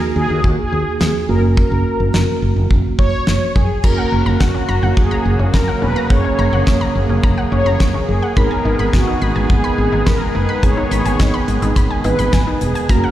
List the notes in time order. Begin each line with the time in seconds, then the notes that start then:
Already playing: A#3 D#4 F#4
0.16 D#2 G#4
0.30 D#2
0.44 D#2 F#4, kick
0.58 G#4
0.72 D#2
1.01 D#2, snare
1.29 F#1 A#3 C#4 F#4 A#4
1.57 A#4, kick
1.72 F#1
2.00 F#1
2.14 F#1, snare
2.42 F#1
2.56 F#1
2.71 F#1, kick
2.99 F#1 C#5, kick
3.27 F#1, snare
3.55 F#2 G#4, kick
3.84 F#1 C#3 F#3 A#3 C#4 F#4 A#4 A#5, kick, crash
3.98 F#5
4.12 F#1 C#4
4.26 F#1 A#5
4.40 F#1 F#4 F#5, kick, snare
4.54 C#4
4.69 F#1 A#5
4.83 F#1 F#5
4.97 F#1 G#4, kick
5.11 A#5
5.25 F#1
5.39 F#1 C#4
5.54 F#1 A#4 A#5, kick, snare
5.68 F#5
5.82 E1 C#4 B4
5.96 A#5
6.10 F#1 A#3 C#4 G#4 C#5 F#5, kick
6.24 C#4
6.39 F#1 A#5
6.53 F#1 F#5
6.67 F#1 C#4, kick, snare
6.81 A#5
6.95 F#1
7.09 F#1 C#4
7.23 F#1 A#5, kick
7.38 F#5
7.52 F#1 C#4 C#5
7.66 F#1 A#5
7.80 F#1 F#5, kick, snare
7.94 C#4
8.08 F#1 G#4
8.22 F#5
8.37 G#1 D#3 G#3 B3 D#4 G#4 A#4 B5, kick
8.51 G#5
8.65 G#1 D#4
8.79 G#1 B5
8.93 G#1 F#4 G#5, kick, snare
9.07 D#4
9.22 G#1 B5
9.36 G#1 G#5
9.50 G#1 G#4, kick
9.64 B5
9.78 G#1
9.92 G#1 D#4
10.06 G#1 A#4 B5, kick, snare
10.21 G#5
10.35 F#1 D#4 B4
10.49 B5
10.63 G#1 B3 D#4 G#4 C#5 G#5, kick, closed hi-hat
10.77 D#4
10.91 G#1 B5, closed hi-hat
11.05 G#1 G#5, closed hi-hat
11.19 G#1 D#4, kick, snare, closed hi-hat
11.34 B5
11.48 G#1, closed hi-hat
11.62 G#1 D#4, closed hi-hat
11.76 G#1 B5, kick, closed hi-hat
11.90 G#5
12.04 G#1 D#4 B4, closed hi-hat
12.19 G#1 B5, closed hi-hat
12.33 G#1 G#5, kick, snare, closed hi-hat
12.47 D#4
12.61 E1 G#4, closed hi-hat
12.75 G#5, closed hi-hat
12.89 F#1 C#3 F#3 A#3 C#4 F#4 A#4 A#5, kick, closed hi-hat
13.04 F#5